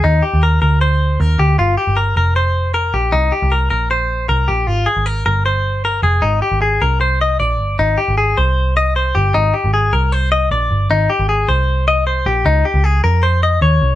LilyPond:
<<
  \new Staff \with { instrumentName = "Clean electric guitar" } { \time 4/4 \key aes \lydian \tempo 4 = 154 ees'8 g'8 bes'8 bes'8 c''4 bes'8 g'8 | f'8 g'8 bes'8 bes'8 c''4 bes'8 g'8 | ees'8 g'8 bes'8 bes'8 c''4 bes'8 g'8 | f'8 aes'8 bes'8 bes'8 c''4 bes'8 aes'8 |
ees'8 g'8 aes'8 bes'8 c''8 ees''8 d''4 | ees'8 g'8 aes'8 c''4 ees''8 c''8 g'8 | ees'8 g'8 aes'8 bes'8 c''8 ees''8 d''4 | ees'8 g'8 aes'8 c''4 ees''8 c''8 g'8 |
ees'8 g'8 aes'8 bes'8 c''8 ees''8 des''4 | }
  \new Staff \with { instrumentName = "Picked electric bass" } { \clef bass \time 4/4 \key aes \lydian ees,8 r16 ees,8. d,4. ees,8 d,8 | g,,8 r16 g,,8. f,,2 bes,,8 | c,8 r16 c,8. bes,,4. c,8 bes,,8 | aes,,8 r16 aes,,8. g,,2 f,,8 |
aes,,8 r16 aes,,8. c,4. bes,,8 g,,8 | aes,,8 r16 aes,,8. c,2 g,,8 | aes,,8 r16 aes,,8. c,4. bes,,8 g,,8 | aes,,8 r16 aes,,8. c,2 bes,,8 |
des,8 r16 des,8. f,4. ees,8 c,8 | }
>>